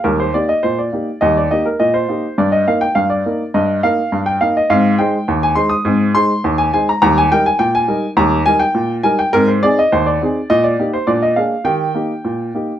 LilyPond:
\new Staff \with { instrumentName = "Upright piano" } { \time 2/4 \key ees \major \tempo 4 = 104 << { bes'16 c''16 d''16 ees''16 c''16 d''8. | ees''16 d''16 ees''16 bes'16 ees''16 c''8. | d''16 ees''16 f''16 g''16 f''16 d''8. | ees''8 f''8. g''16 f''16 ees''16 |
f''8 g''8. aes''16 c'''16 ees'''16~ | ees'''8 c'''8. aes''16 aes''16 bes''16 | bes''16 aes''16 g''16 aes''16 g''16 aes''8. | bes''8 aes''16 g''8. aes''16 g''16 |
bes'16 c''16 d''16 ees''16 c''16 d''8. | ees''16 d''8 c''16 d''16 ees''16 f''8 | g''2 | } \\ { <ees, g>8 <bes ees' g'>8 bes,8 <bes ees' g'>8 | <ees, g>8 <bes ees' g'>8 bes,8 <bes ees' g'>8 | g,8 <bes ees' bes'>8 g,8 <bes ees' bes'>8 | g,8 <bes ees' bes'>8 g,8 <bes ees' bes'>8 |
<aes, c'>8 <aes ees' c''>8 ees,8 <aes ees' c''>8 | <aes, c'>8 <aes ees' c''>8 ees,8 <aes ees' c''>8 | <ees, g>8 <g ees' bes'>8 bes,8 <g ees' bes'>8 | <ees, g>8 <g ees' bes'>8 bes,8 <g ees' bes'>8 |
<aes, c'>8 <c' ees' aes'>8 ees,8 <c' ees' aes'>8 | bes,8 <bes ees' g'>8 <bes, d'>8 <bes d' aes'>8 | <ees g'>8 <bes ees' g'>8 bes,8 <bes ees' g'>8 | } >> }